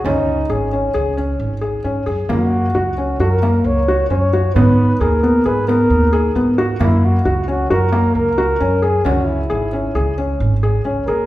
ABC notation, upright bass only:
X:1
M:5/4
L:1/8
Q:1/4=133
K:F#mix
V:1 name="Upright bass" clef=bass
C,,2 G,,,2 C,,2 G,,,2 G,, F,, | F,,2 C,,2 F,,2 C,,2 F,,2 | G,,2 D,,2 G,,2 D,,2 G,,2 | F,,2 C,,2 F,,2 C,,2 F,,2 |
C,,2 G,,,2 C,,2 G,,,2 C,, D,, |]